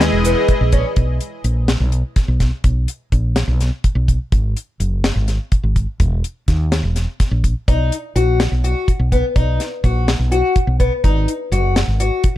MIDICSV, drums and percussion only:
0, 0, Header, 1, 2, 480
1, 0, Start_track
1, 0, Key_signature, 5, "major"
1, 0, Tempo, 479616
1, 966, Time_signature, 7, 3, 24, 8
1, 12385, End_track
2, 0, Start_track
2, 0, Title_t, "Drums"
2, 7, Note_on_c, 9, 38, 97
2, 7, Note_on_c, 9, 42, 78
2, 107, Note_off_c, 9, 38, 0
2, 107, Note_off_c, 9, 42, 0
2, 246, Note_on_c, 9, 42, 65
2, 249, Note_on_c, 9, 82, 54
2, 346, Note_off_c, 9, 42, 0
2, 349, Note_off_c, 9, 82, 0
2, 485, Note_on_c, 9, 42, 78
2, 487, Note_on_c, 9, 36, 97
2, 585, Note_off_c, 9, 42, 0
2, 587, Note_off_c, 9, 36, 0
2, 724, Note_on_c, 9, 42, 60
2, 728, Note_on_c, 9, 36, 76
2, 730, Note_on_c, 9, 82, 16
2, 824, Note_off_c, 9, 42, 0
2, 828, Note_off_c, 9, 36, 0
2, 830, Note_off_c, 9, 82, 0
2, 964, Note_on_c, 9, 42, 66
2, 968, Note_on_c, 9, 36, 93
2, 1064, Note_off_c, 9, 42, 0
2, 1068, Note_off_c, 9, 36, 0
2, 1207, Note_on_c, 9, 42, 56
2, 1307, Note_off_c, 9, 42, 0
2, 1445, Note_on_c, 9, 42, 51
2, 1545, Note_off_c, 9, 42, 0
2, 1683, Note_on_c, 9, 38, 89
2, 1683, Note_on_c, 9, 42, 64
2, 1783, Note_off_c, 9, 38, 0
2, 1783, Note_off_c, 9, 42, 0
2, 1923, Note_on_c, 9, 42, 54
2, 2023, Note_off_c, 9, 42, 0
2, 2162, Note_on_c, 9, 38, 28
2, 2162, Note_on_c, 9, 42, 69
2, 2165, Note_on_c, 9, 36, 90
2, 2262, Note_off_c, 9, 38, 0
2, 2262, Note_off_c, 9, 42, 0
2, 2265, Note_off_c, 9, 36, 0
2, 2404, Note_on_c, 9, 38, 32
2, 2404, Note_on_c, 9, 42, 56
2, 2405, Note_on_c, 9, 36, 64
2, 2504, Note_off_c, 9, 38, 0
2, 2504, Note_off_c, 9, 42, 0
2, 2505, Note_off_c, 9, 36, 0
2, 2642, Note_on_c, 9, 42, 73
2, 2644, Note_on_c, 9, 36, 92
2, 2742, Note_off_c, 9, 42, 0
2, 2744, Note_off_c, 9, 36, 0
2, 2883, Note_on_c, 9, 42, 60
2, 2983, Note_off_c, 9, 42, 0
2, 3124, Note_on_c, 9, 36, 63
2, 3125, Note_on_c, 9, 42, 56
2, 3225, Note_off_c, 9, 36, 0
2, 3225, Note_off_c, 9, 42, 0
2, 3362, Note_on_c, 9, 38, 84
2, 3362, Note_on_c, 9, 42, 68
2, 3462, Note_off_c, 9, 38, 0
2, 3462, Note_off_c, 9, 42, 0
2, 3608, Note_on_c, 9, 38, 30
2, 3608, Note_on_c, 9, 42, 56
2, 3708, Note_off_c, 9, 38, 0
2, 3708, Note_off_c, 9, 42, 0
2, 3844, Note_on_c, 9, 42, 72
2, 3846, Note_on_c, 9, 36, 86
2, 3944, Note_off_c, 9, 42, 0
2, 3946, Note_off_c, 9, 36, 0
2, 4087, Note_on_c, 9, 36, 70
2, 4088, Note_on_c, 9, 42, 57
2, 4187, Note_off_c, 9, 36, 0
2, 4188, Note_off_c, 9, 42, 0
2, 4326, Note_on_c, 9, 42, 69
2, 4327, Note_on_c, 9, 36, 95
2, 4426, Note_off_c, 9, 42, 0
2, 4427, Note_off_c, 9, 36, 0
2, 4569, Note_on_c, 9, 42, 54
2, 4669, Note_off_c, 9, 42, 0
2, 4807, Note_on_c, 9, 42, 50
2, 4907, Note_off_c, 9, 42, 0
2, 5045, Note_on_c, 9, 38, 90
2, 5045, Note_on_c, 9, 42, 67
2, 5145, Note_off_c, 9, 38, 0
2, 5145, Note_off_c, 9, 42, 0
2, 5283, Note_on_c, 9, 38, 30
2, 5283, Note_on_c, 9, 42, 54
2, 5383, Note_off_c, 9, 38, 0
2, 5383, Note_off_c, 9, 42, 0
2, 5522, Note_on_c, 9, 42, 65
2, 5524, Note_on_c, 9, 36, 89
2, 5622, Note_off_c, 9, 42, 0
2, 5624, Note_off_c, 9, 36, 0
2, 5764, Note_on_c, 9, 42, 52
2, 5765, Note_on_c, 9, 36, 69
2, 5864, Note_off_c, 9, 42, 0
2, 5865, Note_off_c, 9, 36, 0
2, 6003, Note_on_c, 9, 42, 68
2, 6004, Note_on_c, 9, 36, 91
2, 6103, Note_off_c, 9, 42, 0
2, 6104, Note_off_c, 9, 36, 0
2, 6247, Note_on_c, 9, 42, 56
2, 6347, Note_off_c, 9, 42, 0
2, 6484, Note_on_c, 9, 38, 30
2, 6484, Note_on_c, 9, 42, 55
2, 6485, Note_on_c, 9, 36, 60
2, 6584, Note_off_c, 9, 38, 0
2, 6584, Note_off_c, 9, 42, 0
2, 6585, Note_off_c, 9, 36, 0
2, 6725, Note_on_c, 9, 38, 85
2, 6725, Note_on_c, 9, 42, 70
2, 6825, Note_off_c, 9, 38, 0
2, 6825, Note_off_c, 9, 42, 0
2, 6964, Note_on_c, 9, 38, 31
2, 6964, Note_on_c, 9, 42, 54
2, 7064, Note_off_c, 9, 38, 0
2, 7064, Note_off_c, 9, 42, 0
2, 7205, Note_on_c, 9, 38, 28
2, 7205, Note_on_c, 9, 42, 71
2, 7206, Note_on_c, 9, 36, 86
2, 7305, Note_off_c, 9, 38, 0
2, 7305, Note_off_c, 9, 42, 0
2, 7306, Note_off_c, 9, 36, 0
2, 7446, Note_on_c, 9, 36, 64
2, 7447, Note_on_c, 9, 42, 58
2, 7546, Note_off_c, 9, 36, 0
2, 7547, Note_off_c, 9, 42, 0
2, 7686, Note_on_c, 9, 36, 90
2, 7687, Note_on_c, 9, 42, 78
2, 7786, Note_off_c, 9, 36, 0
2, 7787, Note_off_c, 9, 42, 0
2, 7929, Note_on_c, 9, 42, 58
2, 8029, Note_off_c, 9, 42, 0
2, 8168, Note_on_c, 9, 42, 55
2, 8268, Note_off_c, 9, 42, 0
2, 8405, Note_on_c, 9, 38, 85
2, 8405, Note_on_c, 9, 42, 63
2, 8505, Note_off_c, 9, 38, 0
2, 8505, Note_off_c, 9, 42, 0
2, 8651, Note_on_c, 9, 42, 56
2, 8751, Note_off_c, 9, 42, 0
2, 8887, Note_on_c, 9, 36, 83
2, 8889, Note_on_c, 9, 42, 66
2, 8987, Note_off_c, 9, 36, 0
2, 8989, Note_off_c, 9, 42, 0
2, 9128, Note_on_c, 9, 36, 67
2, 9130, Note_on_c, 9, 42, 51
2, 9228, Note_off_c, 9, 36, 0
2, 9230, Note_off_c, 9, 42, 0
2, 9366, Note_on_c, 9, 36, 86
2, 9367, Note_on_c, 9, 42, 64
2, 9467, Note_off_c, 9, 36, 0
2, 9467, Note_off_c, 9, 42, 0
2, 9608, Note_on_c, 9, 38, 29
2, 9608, Note_on_c, 9, 42, 53
2, 9708, Note_off_c, 9, 38, 0
2, 9708, Note_off_c, 9, 42, 0
2, 9847, Note_on_c, 9, 36, 65
2, 9849, Note_on_c, 9, 42, 51
2, 9947, Note_off_c, 9, 36, 0
2, 9949, Note_off_c, 9, 42, 0
2, 10090, Note_on_c, 9, 38, 85
2, 10090, Note_on_c, 9, 42, 64
2, 10190, Note_off_c, 9, 38, 0
2, 10190, Note_off_c, 9, 42, 0
2, 10327, Note_on_c, 9, 42, 53
2, 10427, Note_off_c, 9, 42, 0
2, 10565, Note_on_c, 9, 42, 69
2, 10568, Note_on_c, 9, 36, 95
2, 10666, Note_off_c, 9, 42, 0
2, 10668, Note_off_c, 9, 36, 0
2, 10809, Note_on_c, 9, 36, 72
2, 10810, Note_on_c, 9, 42, 56
2, 10909, Note_off_c, 9, 36, 0
2, 10910, Note_off_c, 9, 42, 0
2, 11050, Note_on_c, 9, 36, 91
2, 11050, Note_on_c, 9, 42, 70
2, 11150, Note_off_c, 9, 36, 0
2, 11150, Note_off_c, 9, 42, 0
2, 11291, Note_on_c, 9, 42, 58
2, 11391, Note_off_c, 9, 42, 0
2, 11533, Note_on_c, 9, 42, 58
2, 11633, Note_off_c, 9, 42, 0
2, 11771, Note_on_c, 9, 38, 84
2, 11771, Note_on_c, 9, 42, 74
2, 11871, Note_off_c, 9, 38, 0
2, 11871, Note_off_c, 9, 42, 0
2, 12010, Note_on_c, 9, 42, 58
2, 12110, Note_off_c, 9, 42, 0
2, 12246, Note_on_c, 9, 42, 76
2, 12250, Note_on_c, 9, 36, 91
2, 12346, Note_off_c, 9, 42, 0
2, 12350, Note_off_c, 9, 36, 0
2, 12385, End_track
0, 0, End_of_file